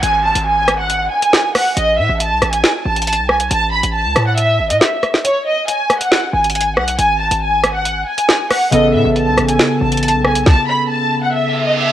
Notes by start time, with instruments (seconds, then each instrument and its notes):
Already playing: downlifter
0.03 808-style bass G#1, violin section G#5, closed hi-hat
0.25 violin section A5
0.35 808-style bass G#1, closed hi-hat
0.47 violin section G#5
0.68 cross-stick, closed hi-hat
0.79 violin section F#5
0.90 closed hi-hat
1.12 violin section G#5
1.22 closed hi-hat
1.33 snare
1.55 violin section F#5, cross-stick, open hi-hat
1.77 808-style bass A1, violin section D#5, closed hi-hat
1.98 808-style bass A2, violin section E5
2.09 808-style bass A1
2.20 violin section A5, closed hi-hat
2.31 808-style bass B1
2.42 808-style bass A1, cross-stick, closed hi-hat
2.53 violin section G#5, closed hi-hat
2.64 snare
2.85 808-style bass A1, violin section A5
2.96 closed hi-hat
3.02 closed hi-hat
3.07 violin section A5, closed hi-hat
3.13 closed hi-hat
3.18 808-style bass B1
3.29 violin section G#5, cross-stick
3.40 closed hi-hat
3.51 808-style bass A1, violin section A5, closed hi-hat
3.73 violin section B5
3.83 808-style bass A1, closed hi-hat
3.94 violin section A5
4.05 808-style bass C#2
4.16 808-style bass A2, cross-stick, closed hi-hat
4.27 violin section F#5
4.38 violin section E5, closed hi-hat
4.59 808-style bass G#1
4.70 808-style bass A2, violin section D#5, closed hi-hat
4.81 violin section E5, snare
5.03 cross-stick, closed hi-hat
5.14 snare
5.24 violin section C#5, closed hi-hat
5.46 violin section D#5
5.68 violin section G#5, closed hi-hat
5.90 cross-stick, closed hi-hat
6.01 violin section F#5, closed hi-hat
6.12 snare
6.33 808-style bass G#1, violin section G#5
6.44 closed hi-hat
6.50 closed hi-hat
6.55 violin section G#5, closed hi-hat
6.61 closed hi-hat
6.77 808-style bass B1, violin section F#5, cross-stick
6.88 closed hi-hat
6.99 808-style bass G#1, violin section G#5, closed hi-hat
7.20 violin section A5
7.31 808-style bass G#1, closed hi-hat
7.42 violin section G#5
7.64 cross-stick, closed hi-hat
7.75 violin section F#5
7.86 closed hi-hat
8.07 violin section G#5
8.18 closed hi-hat
8.29 snare
8.51 violin section F#5, cross-stick, open hi-hat
8.71 808-style bass A1, synth keys C#3 B3 A4, violin section D#5, closed hi-hat
8.94 808-style bass A2, violin section E5
9.05 808-style bass A1
9.16 violin section A5, closed hi-hat
9.27 808-style bass B1
9.38 808-style bass A1, cross-stick, closed hi-hat
9.49 violin section G#5, closed hi-hat
9.59 snare
9.81 808-style bass A1, violin section A5
9.92 closed hi-hat
9.97 closed hi-hat
10.03 violin section A5, closed hi-hat
10.08 closed hi-hat
10.14 808-style bass B1
10.25 violin section G#5, cross-stick
10.35 closed hi-hat
10.46 violin section A5, kick, snare
10.68 violin section B5
10.90 violin section A5
11.22 violin section F#5
11.33 violin section E5, reverse cymbal
11.66 violin section D#5
11.77 violin section E5